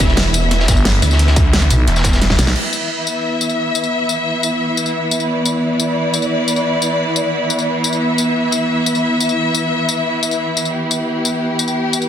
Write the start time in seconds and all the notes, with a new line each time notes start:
Already playing: E1 E3 B3 E4 E5
0.00 kick, closed hi-hat, tambourine
0.08 snare
0.17 snare, closed hi-hat
0.33 closed hi-hat, tambourine
0.41 closed hi-hat
0.51 snare, closed hi-hat
0.60 snare
0.68 G1, kick, snare, closed hi-hat, tambourine
0.77 tambourine
0.85 snare, closed hi-hat
0.94 closed hi-hat
1.02 D2, closed hi-hat, open hi-hat, tambourine
1.11 snare, tambourine
1.19 closed hi-hat
1.27 snare
1.36 D2, kick, closed hi-hat, tambourine
1.53 snare, closed hi-hat
1.62 snare, closed hi-hat
1.70 B1, closed hi-hat, tambourine
1.87 E1, closed hi-hat
1.96 snare, tambourine
2.04 kick, snare, closed hi-hat, tambourine
2.13 snare, closed hi-hat, tambourine
2.22 snare, closed hi-hat
2.30 kick, snare
2.39 B1, snare, closed hi-hat, open hi-hat, tambourine
2.47 snare, tambourine
2.56 E3 B3 E4 E5, crash
2.73 tambourine
3.07 tambourine
3.41 tambourine
3.49 tambourine
3.75 tambourine
3.84 tambourine
4.09 tambourine
4.43 tambourine
4.77 tambourine
4.86 tambourine
5.11 tambourine
5.20 tambourine
5.28 D5
5.45 tambourine
5.80 tambourine
6.14 tambourine
6.22 tambourine
6.48 tambourine
6.56 tambourine
6.82 tambourine
7.16 tambourine
7.50 tambourine
7.59 tambourine
7.84 tambourine
7.93 tambourine
8.01 E5
8.18 tambourine
8.52 tambourine
8.86 tambourine
8.95 tambourine
9.20 tambourine
9.29 tambourine
9.55 tambourine
9.89 tambourine
10.23 tambourine
10.31 tambourine
10.57 tambourine
10.65 tambourine
10.74 G4
10.91 tambourine
11.25 tambourine
11.59 tambourine
11.68 tambourine
11.93 tambourine
12.02 tambourine